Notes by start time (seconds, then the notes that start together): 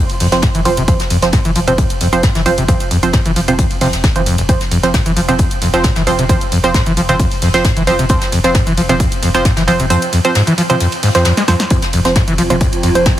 0.10 open hi-hat, ride
0.20 F1 F2, open hi-hat, ride
0.32 F1 F3 C4 C5, snare, closed hi-hat, ride
0.42 G#2, kick, snare, closed hi-hat, ride
0.55 F1 E3, closed hi-hat, ride
0.65 F1 F3 C4 C5, closed hi-hat, open hi-hat, ride
0.77 F1 C3, closed hi-hat, ride
0.88 F2 F3 C4 C5, kick, closed hi-hat, ride
1.00 snare, closed hi-hat, ride
1.10 F1 F2, closed hi-hat, open hi-hat, ride
1.22 F1 F3 C4 C5, snare, closed hi-hat, ride
1.32 G#2, kick, snare, closed hi-hat, ride
1.45 F1 E3, closed hi-hat, ride
1.55 F1 F3, closed hi-hat, open hi-hat, ride
1.67 F1 C3 F3 C4 C5, closed hi-hat, ride
1.78 F2, kick, closed hi-hat, ride
1.90 closed hi-hat, ride
2.01 F1 F2, closed hi-hat, open hi-hat, ride
2.13 F1 F3 C4 C5, closed hi-hat, ride
2.23 G#2, kick, snare, closed hi-hat, ride
2.35 F1 E3, snare, closed hi-hat, ride
2.46 F1 F3 C4 C5, closed hi-hat, open hi-hat, ride
2.58 F1 C3, closed hi-hat, ride
2.68 F2 F3 C4 C5, kick, closed hi-hat, ride
2.80 closed hi-hat, ride
2.91 F1 F2, closed hi-hat, open hi-hat, ride
3.03 F1 F3 C4 C5, closed hi-hat, ride
3.13 G#2, kick, snare, closed hi-hat, ride
3.25 F1 E3, closed hi-hat, ride
3.36 F1 F3, closed hi-hat, open hi-hat, ride
3.48 F1 C3 F3 C4 C5, closed hi-hat, ride
3.59 F2, kick, closed hi-hat, ride
3.71 open hi-hat, ride
3.81 F1 C3 F3 C4 C5, open hi-hat, ride
3.93 F1, snare, closed hi-hat, ride
4.04 F2, kick, snare, closed hi-hat, ride
4.16 F1 E3 F3 C4 C5, closed hi-hat, ride
4.26 F1 F2, closed hi-hat, open hi-hat, ride
4.38 F1, closed hi-hat, ride
4.49 F2 F3 C4 C5, kick, closed hi-hat, ride
4.61 snare, closed hi-hat, ride
4.71 F1 F2, closed hi-hat, open hi-hat, ride
4.83 F1 F3 C4 C5, snare, closed hi-hat, ride
4.94 G#2, kick, snare, closed hi-hat, ride
5.06 F1 E3, closed hi-hat, ride
5.16 F1 F3, closed hi-hat, open hi-hat, ride
5.28 F1 C3 F3 C4 C5, closed hi-hat, ride
5.38 F2, kick, closed hi-hat, ride
5.51 closed hi-hat, ride
5.62 F1 F2, closed hi-hat, open hi-hat, ride
5.74 F1 F3 C4 C5, closed hi-hat, ride
5.84 G#2, kick, snare, closed hi-hat, ride
5.96 F1 E3, snare, closed hi-hat, ride
6.07 F1 F3 C4 C5, closed hi-hat, open hi-hat, ride
6.19 F1 C3, closed hi-hat, ride
6.29 F2 F3 C4 C5, kick, closed hi-hat, ride
6.41 closed hi-hat, ride
6.52 F1 F2, closed hi-hat, open hi-hat, ride
6.64 F1 F3 C4 C5, closed hi-hat, ride
6.74 G#2, kick, snare, closed hi-hat, ride
6.86 F1 E3, closed hi-hat, ride
6.97 F1 F3, closed hi-hat, open hi-hat, ride
7.09 F1 C3 F3 C4 C5, closed hi-hat, ride
7.19 F2, kick, closed hi-hat, ride
7.31 open hi-hat, ride
7.42 F1 F2, open hi-hat, ride
7.54 F1 F3 C4 C5, snare, closed hi-hat, ride
7.65 G#2, kick, snare, closed hi-hat, ride
7.76 F1 E3, closed hi-hat, ride
7.87 F1 F3 C4 C5, closed hi-hat, open hi-hat, ride
7.99 F1 C3, closed hi-hat, ride
8.09 F2 F3 C4 C5, kick, closed hi-hat, ride
8.21 snare, closed hi-hat, ride
8.32 F1 F2, closed hi-hat, open hi-hat, ride
8.44 F1 F3 C4 C5, snare, closed hi-hat, ride
8.54 G#2, kick, snare, closed hi-hat, ride
8.67 F1 E3, closed hi-hat, ride
8.77 F1 F3, closed hi-hat, open hi-hat, ride
8.89 F1 C3 F3 C4 C5, closed hi-hat, ride
9.00 F2, kick, closed hi-hat, ride
9.12 closed hi-hat, ride
9.22 F1 F2, closed hi-hat, open hi-hat, ride
9.34 F1 F3 C4 C5, closed hi-hat, ride
9.45 G#2, kick, snare, closed hi-hat, ride
9.56 F1 E3, snare, closed hi-hat, ride
9.68 F1 F3 C4 C5, closed hi-hat, open hi-hat, ride
9.79 F1 C3, closed hi-hat, ride
9.90 F2 F3 C4 C5, closed hi-hat, ride
10.02 closed hi-hat, ride
10.13 F2, closed hi-hat, open hi-hat, ride
10.25 F3 C4 C5, closed hi-hat, ride
10.35 G#2, snare, closed hi-hat, ride
10.47 E3, closed hi-hat, ride
10.58 F3, closed hi-hat, open hi-hat, ride
10.70 C3 F3 C4 C5, closed hi-hat, ride
10.80 F2, closed hi-hat, ride
10.92 open hi-hat, ride
11.03 G#2, open hi-hat, ride
11.15 F2 F3 C4 C5, snare, closed hi-hat, ride
11.25 F2, snare, closed hi-hat, ride
11.37 G#3, snare, closed hi-hat, ride
11.48 F2 F3 C4 C5, snare, closed hi-hat, open hi-hat, ride
11.60 snare, closed hi-hat, ride
11.70 F2 F3 C4 F4 C5, kick, closed hi-hat, ride
11.82 snare, closed hi-hat, ride
11.87 C5
11.93 F1 F2 G5, closed hi-hat, open hi-hat, ride
12.05 F1 F3 C4 C5, snare, closed hi-hat, ride
12.15 G#2, kick, snare, closed hi-hat, ride
12.28 F1 E3, closed hi-hat, ride
12.38 F1 F3, closed hi-hat, open hi-hat, ride
12.50 F1 C3 F3 C4 C5, closed hi-hat, ride
12.61 F2, kick, closed hi-hat, ride
12.73 closed hi-hat, ride
12.83 F1 F2, closed hi-hat, open hi-hat, ride
12.95 F1 F3 C4 C5, closed hi-hat, ride
13.06 G#2, kick, snare, closed hi-hat, ride